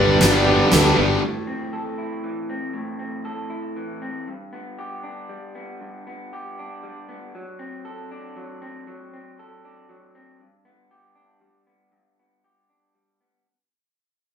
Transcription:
Already playing: fingered electric bass G1, clean electric guitar G2 G3 D4 G4, overdriven electric guitar G3 B3 G4 B4, distorted electric guitar B3, felt piano B4, ambient pad B4 D5 G5 D6, electric slide guitar D5
0.00 overdriven electric guitar D4
0.19 fingered electric bass G1, distorted electric guitar G3, overdriven electric guitar B3 D4 G4, clean electric guitar B3, snare, closed hi-hat
0.24 overdriven electric guitar B4
0.45 overdriven electric guitar G3 B3 D4 G4 B4, clean electric guitar G4
0.70 fingered electric bass D2, distorted electric guitar G3, overdriven electric guitar B3 D4 G4 B4, clean electric guitar D4, felt piano A4, snare, closed hi-hat
0.96 fingered electric bass G1, clean electric guitar G3, overdriven electric guitar G3 B3 D4 G4 B4, felt piano B4
1.22 clean electric guitar A2
1.47 clean electric guitar C4
1.73 clean electric guitar A4
1.98 clean electric guitar E4
2.24 clean electric guitar E3
2.50 clean electric guitar C4
2.73 clean electric guitar A2
2.99 clean electric guitar C4
3.25 clean electric guitar A4
3.50 clean electric guitar E4
3.76 clean electric guitar E3
4.02 clean electric guitar C4
4.28 clean electric guitar G2
4.53 clean electric guitar B3
4.79 clean electric guitar G4
5.03 clean electric guitar D4
5.29 clean electric guitar G3
5.55 clean electric guitar B3
5.81 clean electric guitar G2
6.07 clean electric guitar B3
6.33 clean electric guitar G4
6.59 clean electric guitar D4
6.83 clean electric guitar G3
7.09 clean electric guitar B3
7.35 clean electric guitar F#3
7.59 clean electric guitar C4
7.85 clean electric guitar A4
8.11 clean electric guitar D4
8.36 clean electric guitar F#3
8.62 clean electric guitar C4
8.87 clean electric guitar F#3
9.13 clean electric guitar C4
9.39 clean electric guitar A4
9.65 clean electric guitar D4
9.89 clean electric guitar F#3
10.15 clean electric guitar C4
10.40 clean electric guitar G2
10.65 clean electric guitar B3
10.91 clean electric guitar G4
11.15 clean electric guitar D4
11.41 clean electric guitar G3
11.67 clean electric guitar B3
11.92 clean electric guitar G2
12.19 clean electric guitar B3
12.44 clean electric guitar G4
12.70 clean electric guitar D4
12.95 clean electric guitar G3
13.20 clean electric guitar B3

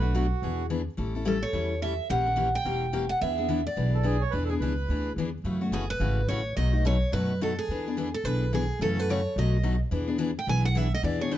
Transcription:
Already playing: upright bass B1, accordion B4
0.02 steel-string acoustic guitar A3 D4 F#4
0.14 steel-string acoustic guitar B2 F#3 A3 D4 F#4, accordion F#4
0.42 upright bass E2, steel-string acoustic guitar E3 B3 D4 G#4
0.70 steel-string acoustic guitar E3 B3 D4 G#4
0.97 upright bass A1, steel-string acoustic guitar E3 G3 C#4 E4 A4
1.15 steel-string acoustic guitar C#4 E4 A4
1.25 steel-string acoustic guitar E3 G3 C#4 E4 A4
1.43 steel-string acoustic guitar C#5
1.53 upright bass E2, steel-string acoustic guitar E3 G3 C#4 E4 A4
1.82 steel-string acoustic guitar E3 G3 C#4 E4 A4 E5
2.09 upright bass A#1, steel-string acoustic guitar E3 A#3 C#4 G4 A#4 F#5
2.26 steel-string acoustic guitar C#4 G4 A#4
2.36 steel-string acoustic guitar E3 A#3 C#4 G4 A#4
2.55 steel-string acoustic guitar G5
2.65 upright bass E1, steel-string acoustic guitar E3 A#3 C#4 G4 A#4
2.93 steel-string acoustic guitar E3 A#3 C#4 G4 A#4
3.09 steel-string acoustic guitar F#5
3.21 upright bass E2, steel-string acoustic guitar E3 B3 D4 G#4 E5
3.38 steel-string acoustic guitar B3 D4 G#4
3.49 steel-string acoustic guitar E3 B3 D4 G#4
3.67 steel-string acoustic guitar D5
3.76 upright bass B1, steel-string acoustic guitar E3 B3 D4 G#4
3.94 accordion A4
4.03 steel-string acoustic guitar E3 B3 D4 G#4, accordion G#4
4.21 accordion C#5
4.31 upright bass E2, steel-string acoustic guitar E3 B3 D4 G#4, accordion B4
4.45 accordion A4
4.49 steel-string acoustic guitar B3 D4 G#4, accordion G#4
4.60 upright bass C#2, steel-string acoustic guitar E3 B3 D4 G#4, accordion B4
4.88 upright bass D2, steel-string acoustic guitar E3 B3 D4 G#4
5.16 upright bass E2, steel-string acoustic guitar E3 B3 D4 G#4
5.44 upright bass F#2, steel-string acoustic guitar C#3 E3 A3 C#4 F#4
5.61 steel-string acoustic guitar A3 C#4 F#4
5.71 upright bass F#1, steel-string acoustic guitar C#3 E3 A3 C#4 F#4 G#4
5.90 steel-string acoustic guitar B4
6.00 upright bass G#1, steel-string acoustic guitar C#3 E3 A3 C#4 F#4
6.28 upright bass A1, steel-string acoustic guitar C#3 E3 A3 C#4 F#4 C#5
6.57 upright bass B1, steel-string acoustic guitar B2 F#3 A3 D#4 F#4 D#5
6.73 steel-string acoustic guitar A3 D#4 F#4
6.85 steel-string acoustic guitar B2 F#3 A3 D#4 F#4 C#5
7.12 upright bass F#2, steel-string acoustic guitar B2 F#3 A3 D#4 F#4 B4
7.41 steel-string acoustic guitar B2 F#3 A3 D#4 F#4 A4
7.59 steel-string acoustic guitar G#4
7.68 upright bass E2, steel-string acoustic guitar E3 B3 D4 G#4
7.86 steel-string acoustic guitar B3 D4 G#4
7.97 steel-string acoustic guitar E3 B3 D4 G#4
8.14 steel-string acoustic guitar A4
8.24 upright bass B1, steel-string acoustic guitar E3 B3 D4 G#4 B4
8.53 steel-string acoustic guitar E3 B3 D4 G#4
8.79 upright bass F#2, steel-string acoustic guitar C#3 E3 A3 C#4 F#4 A4
8.97 steel-string acoustic guitar A3 C#4 F#4 B4
9.09 steel-string acoustic guitar C#3 E3 A3 C#4 F#4 C#5
9.36 upright bass B1, steel-string acoustic guitar B2 F#3 A3 D#4 F#4 D#5
9.63 steel-string acoustic guitar B2 F#3 A3 D#4 F#4
9.91 upright bass E2, steel-string acoustic guitar E3 B3 D4 G#4
10.07 steel-string acoustic guitar B3 D4 G#4
10.18 steel-string acoustic guitar E3 B3 D4 G#4
10.39 steel-string acoustic guitar G5
10.47 upright bass B1, steel-string acoustic guitar E3 B3 D4 G#4 G#5
10.65 steel-string acoustic guitar F#5
10.75 steel-string acoustic guitar E3 B3 D4 G#4 E5
10.94 steel-string acoustic guitar D#5
11.03 upright bass E2, steel-string acoustic guitar E3 B3 D4 G#4 D5
11.20 steel-string acoustic guitar B3 D4 G#4 C#5
11.31 steel-string acoustic guitar E3 B3 D4 G#4 B4

